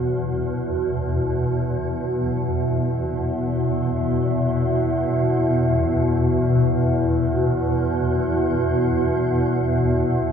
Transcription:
Already playing: E2 B2 B3 E4 F#4 B4 E5
7.37 F#4

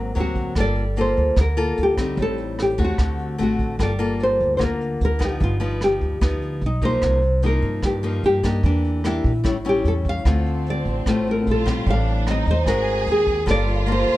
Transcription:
Already playing: G#1 G#2 F#3 A#3 C4 A#4
0.15 D2 F#3 A#3 C4, closed hi-hat
0.20 F#4
0.35 kick, closed hi-hat
0.55 G1 G3 A#3 F4 A4, kick, cross-stick, closed hi-hat
0.60 D5
0.75 closed hi-hat
0.96 A#3 F4 A4, closed hi-hat
1.01 C5
1.16 D2, closed hi-hat
1.36 D2 D3, kick, cross-stick, closed hi-hat
1.41 A#4
1.56 A#3 F4 A4, closed hi-hat
1.77 D2, closed hi-hat
1.83 G4
1.97 G3 C4 D#4, kick, cross-stick, closed hi-hat
2.17 A1 A2, kick, closed hi-hat
2.22 A4
2.38 closed hi-hat
2.59 G4, cross-stick, closed hi-hat
2.78 D#2 A3 C4 F#4, kick, closed hi-hat
2.84 F#4
2.98 D2 D3, kick, cross-stick, closed hi-hat
3.19 closed hi-hat
3.38 A1 A3 C4 F#4, closed hi-hat
3.43 F#4
3.59 kick, closed hi-hat
3.79 G1 G3 A#3 F4 A4 D5, kick, cross-stick, closed hi-hat
3.99 A#3 F4 A4, closed hi-hat
4.20 C5, closed hi-hat
4.40 D2, closed hi-hat
4.57 D2 D3 A#3 F4 C5, kick, cross-stick, closed hi-hat
4.63 A#4
4.81 closed hi-hat
5.01 D2 A#4, closed hi-hat
5.19 F3 B3 D#4, kick, cross-stick, closed hi-hat
5.25 G4
5.40 G1 G2 F4, kick, closed hi-hat
5.60 F3 B3 D#4, closed hi-hat
5.81 G4, cross-stick, closed hi-hat
6.01 D2, closed hi-hat
6.21 D2 F3 B3 D#4, kick, cross-stick, closed hi-hat
6.42 closed hi-hat
6.61 B1, closed hi-hat
6.66 D#4
6.81 F3 A#3 D#4 C5, kick, closed hi-hat
7.02 C2 C3, kick, cross-stick, closed hi-hat
7.22 closed hi-hat
7.42 F3 A#3 D#4, closed hi-hat
7.46 A#4
7.62 G2, closed hi-hat
7.83 G2 G4, kick, cross-stick, closed hi-hat
8.03 F3 A#3 D#4, closed hi-hat
8.23 G2 G4, closed hi-hat
8.43 A#3 D4 D#4 G4, kick, cross-stick
8.63 E2 E3 D4, kick, closed hi-hat
8.84 closed hi-hat
9.04 A#3 D4 E4 G4, cross-stick, closed hi-hat
9.24 A#2, kick, closed hi-hat
9.44 A1 A2 G3 C#4 E4, kick, cross-stick, closed hi-hat
9.65 G3 C#4 E4, closed hi-hat
9.69 G4
9.84 E2 A4, closed hi-hat
10.05 kick, closed hi-hat
10.09 F5
10.25 D2 D3 A3 C4 F4, kick, cross-stick, closed hi-hat
10.46 closed hi-hat
10.66 closed hi-hat
10.70 D5
10.85 A1, closed hi-hat
11.06 A1 A2 A3 C4 F4 C5, kick, cross-stick, closed hi-hat
11.27 closed hi-hat
11.31 A#4
11.47 A#1 F4, closed hi-hat
11.51 A4
11.66 G3 C4, kick, cross-stick, closed hi-hat
11.87 A1 A2 D4 F5, kick, closed hi-hat
12.07 closed hi-hat
12.26 G3 C4 D#4, cross-stick, closed hi-hat
12.31 D#5
12.46 D#2, closed hi-hat
12.51 C5
12.66 G#1 G#3 C4 F#4 G#4 A#4, kick, cross-stick, closed hi-hat
12.87 closed hi-hat
13.06 D#2, closed hi-hat
13.12 G#4
13.27 kick, closed hi-hat
13.46 G1 G3 A#3 F4 A4, kick, cross-stick, closed hi-hat
13.51 D5
13.68 closed hi-hat
13.86 A#3 F4 A4, closed hi-hat
13.92 C5
14.07 D2, closed hi-hat

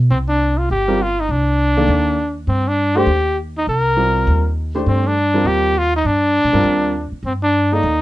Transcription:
0.10 C2 C4
0.29 D4
0.58 F4
0.70 G1 G4
0.88 G3 C4 F4 A#4
1.02 F4
1.20 D#4
1.29 C2 D4
1.77 D#3 A#3 A4 D5
1.88 D#2
2.47 G2 C4
2.68 D4
2.96 A3 D4 G4 C5
3.06 D#2
3.58 D#4
3.67 C2 A#4
3.96 G3 C4 F4 A#4
4.27 D#2
4.75 A3 D4 G4 C5
4.86 G2 C4
5.07 D4
5.34 G3 C4 F4 A#4
5.45 D#2 G4
5.78 F4
5.96 D#4
6.05 G2 D4
6.44 A#2
6.53 G2 G3 C4 F4 A#4
6.64 D#2
7.12 muted upright bass stroke
7.23 G2 C4
7.43 D4
7.72 A#3 D#4 A4 D5
7.83 D#2

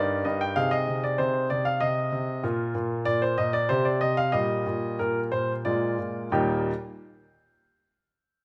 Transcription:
Already playing: G2 D#4 A#4 D5
0.25 G2 D#5
0.41 G5
0.56 C3 D#4 G#4 F5
0.71 D#5
0.88 C3
1.04 D5
1.18 C3 C5
1.50 C3 D5
1.65 F5
1.80 C3 D#5
2.12 C3
2.43 A#2 F4 A#4
2.75 A#2
3.05 A#2 D5
3.22 C5
3.38 A#2 D#5
3.53 D5
3.69 C3 C4 G4 C5
3.85 D5
4.01 C3 D#5
4.17 F5
4.32 A#2 G3 G4 D#5
4.66 A#2
4.99 A#2 A#4
5.32 A#2 C5
5.65 A#2 G#3 F4 D5
5.99 A#2
6.32 D#2 A#2 G3 A#3 D#4 G4 G5

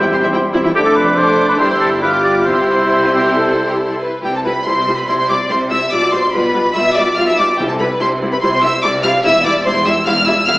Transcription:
Already playing: G3 C4 G4 G5 C6
0.01 E2 E4 G5
0.11 E1 E2 E4 G4 C6
0.22 E2 C4 E4 E5
0.33 E1 E2 E4 G5
0.53 E1 E2 C4 E4 E5
0.64 E2 E4 G5
0.74 F1 F2 A3 D4 G4 A4 D6
0.86 A4
0.95 B4
1.16 A3 D4 A4 C5 D6
1.49 B4
1.59 G1 G2 G3 E4 G4 C5 C6 E6
1.71 C5
1.81 A4
2.01 G3 F4 G4 B4 D6 F6
2.24 D5
2.46 C2 C3 G3 E4 G4 C5 C6 E6
2.91 E4
3.03 F4
3.13 G4
3.35 A4
3.69 G4
3.78 A4
3.91 A4
4.02 B4
4.23 C2 C3 G3 E4 G4 G5
4.34 A4 A5
4.45 G3 E4 B4 B5
4.65 C2 C3 G3 E4 C5 C6
4.88 G3 E4
4.97 B4 B5
5.08 C2 C3 G3 E4 C5 C6
5.19 C5 C6
5.29 G3 E4 D5 D6
5.50 C2 C3 G3 E4 C5 C6
5.71 G3 E4 E5 E6
5.92 B1 B2 G3 F4 D5 D6
6.13 G3 F4 C5 C6
6.33 B1 B2 G3 F4 B4 B5
6.55 G3 F4
6.75 B1 B2 G3 F4 E5 E6
6.96 G3 F4 D5 D6
7.16 B1 B2 G3 F4 F5 F6
7.28 E5 E6
7.38 G3 F4 D5 D6
7.58 C2 C3 G3 E4 G4 G5
7.69 A4 A5
7.80 G3 E4 B4 B5
8.01 C2 C3 G3 E4 C5 C6
8.22 G3 E4
8.32 B4 B5
8.41 C2 C3 G3 E4 C5 C6
8.53 C5 C6
8.62 G3 E4 E5 E6
8.83 C2 C3 G3 E4 D5 D6
9.03 G3 E4 F5 F6
9.24 E1 E2 G3 E4 E5 E6
9.45 G3 E4 D5 D6
9.65 E1 E2 G3 E4 C5 C6
9.86 G3 E4 E5 E6
10.07 E1 E2 G3 E4 F5 F6
10.27 G3 E4 E5 E6
10.47 E1 E2 G3 E4 F5 F6

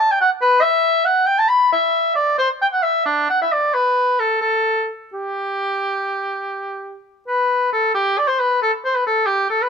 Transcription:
0.00 A5
0.11 G5
0.21 F#5
0.41 B4
0.62 E5
1.05 F#5
1.27 G5
1.38 A5
1.48 B5
1.72 E5
2.15 D5
2.38 C5
2.62 G5
2.73 F#5
2.82 E5
3.06 D4
3.30 F#5
3.42 E5
3.52 D5
3.74 B4
4.19 A4
4.41 A4
5.13 G4
7.27 B4
7.73 A4
7.94 G4
8.18 D5
8.28 C5
8.39 B4
8.62 A4
8.85 C5
8.95 B4
9.06 A4
9.26 G4
9.50 A4
9.62 B4

